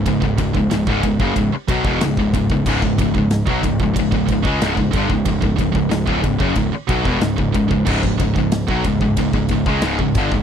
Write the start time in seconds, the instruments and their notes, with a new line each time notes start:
0.06 picked electric bass C#1, distorted electric guitar C#2 G#2, kick, ride
0.22 picked electric bass C#1, distorted electric guitar C#2 G#2, kick
0.38 picked electric bass C#1, distorted electric guitar C#2 G#2, kick, ride
0.54 picked electric bass C#1, distorted electric guitar C#2 G#2, kick
0.70 picked electric bass C#1, distorted electric guitar C#2 G#2, snare, ride
0.87 picked electric bass C#1, distorted electric guitar C#2 G#2, kick
1.03 picked electric bass C#1, distorted electric guitar C#2 G#2, kick, ride
1.20 picked electric bass F#1, distorted electric guitar F#2 C#3, kick
1.35 picked electric bass C#1, distorted electric guitar C#2 G#2, kick, ride
1.53 muted picked electric bass stroke, muted distorted electric guitar stroke
1.68 picked electric bass B1, distorted electric guitar B2 F#3, kick, ride
1.84 picked electric bass E1, distorted electric guitar E2 B2, kick
2.01 picked electric bass C#1, distorted electric guitar C#2 G#2, snare, ride
2.17 picked electric bass C#1, distorted electric guitar C#2 G#2, kick
2.33 picked electric bass C#1, distorted electric guitar C#2 G#2, kick, ride
2.50 picked electric bass C#1, distorted electric guitar C#2 G#2, kick
2.66 picked electric bass C#1, distorted electric guitar C#2 G#2, kick, crash
2.82 picked electric bass C#1, distorted electric guitar C#2 G#2, kick
2.98 picked electric bass C#1, distorted electric guitar C#2 G#2, kick, ride
3.14 picked electric bass C#1, distorted electric guitar C#2 G#2, kick
3.18 distorted electric guitar C#2
3.30 snare, ride
3.47 picked electric bass B1, distorted electric guitar B2 F#3, kick
3.63 picked electric bass C#1, distorted electric guitar C#2 G#2, kick, ride
3.80 picked electric bass C#1, distorted electric guitar C#2 G#2, kick
3.94 picked electric bass C#1, distorted electric guitar C#2 G#2, kick, ride
3.99 distorted electric guitar C#2 G#2
4.12 picked electric bass C#1, distorted electric guitar C#2 G#2, kick
4.26 picked electric bass C#1, distorted electric guitar C#2 G#2, kick, ride
4.32 distorted electric guitar C#2 G#2
4.43 picked electric bass C#2, distorted electric guitar C#3 G#3, kick
4.47 distorted electric guitar C#3 G#3
4.58 picked electric bass C#1, distorted electric guitar C#2, snare, ride
4.63 distorted electric guitar C#2 G#2
4.77 picked electric bass C#1, distorted electric guitar C#2 G#2, kick
4.91 picked electric bass G1, distorted electric guitar G2 D3, kick, ride
4.96 distorted electric guitar G2 D3
5.09 picked electric bass C#1, distorted electric guitar C#2 G#2, kick
5.25 picked electric bass C#1, distorted electric guitar C#2 G#2, kick, ride
5.42 picked electric bass C#1, distorted electric guitar C#2 G#2, kick
5.56 picked electric bass C#1, distorted electric guitar C#2 G#2, kick, ride
5.61 distorted electric guitar C#2 G#2
5.75 picked electric bass C#1, distorted electric guitar C#2 G#2, kick
5.91 picked electric bass C#1, distorted electric guitar C#2 G#2, snare, ride
6.07 picked electric bass C#1, distorted electric guitar C#2 G#2, kick
6.24 picked electric bass C#1, distorted electric guitar C#2 G#2, kick, ride
6.40 picked electric bass F#1, distorted electric guitar F#2 C#3, kick
6.55 picked electric bass C#1, distorted electric guitar C#2 G#2, kick, ride
6.73 muted picked electric bass stroke, muted distorted electric guitar stroke
6.89 picked electric bass B1, distorted electric guitar B2 F#3, kick, ride
7.03 picked electric bass E1, distorted electric guitar E2 B2, kick
7.07 distorted electric guitar E2 B2
7.21 picked electric bass C#1, distorted electric guitar C#2 G#2, snare, ride
7.38 picked electric bass C#1, distorted electric guitar C#2 G#2, kick
7.54 picked electric bass C#1, distorted electric guitar C#2 G#2, kick, ride
7.71 picked electric bass C#1, distorted electric guitar C#2 G#2, kick
7.86 picked electric bass C#1, distorted electric guitar C#2 G#2, kick, crash
8.03 picked electric bass C#1, distorted electric guitar C#2 G#2, kick
8.20 picked electric bass C#1, distorted electric guitar C#2 G#2, kick, ride
8.33 picked electric bass C#1, distorted electric guitar C#2, kick
8.38 distorted electric guitar C#2 G#2
8.52 snare, ride
8.68 picked electric bass B1, distorted electric guitar B2 F#3, kick
8.84 picked electric bass C#1, distorted electric guitar C#2 G#2, kick, ride
9.01 picked electric bass C#1, distorted electric guitar C#2 G#2, kick
9.17 picked electric bass C#1, distorted electric guitar C#2 G#2, kick, ride
9.33 picked electric bass C#1, distorted electric guitar C#2 G#2, kick
9.49 picked electric bass C#1, distorted electric guitar C#2 G#2, kick, ride
9.66 picked electric bass C#2, distorted electric guitar C#3 G#3, kick
9.82 picked electric bass C#1, distorted electric guitar C#2 G#2, snare, ride
9.99 picked electric bass C#1, distorted electric guitar C#2 G#2, kick
10.15 picked electric bass G1, distorted electric guitar G2 D3, kick, ride
10.31 picked electric bass C#1, distorted electric guitar C#2 G#2, kick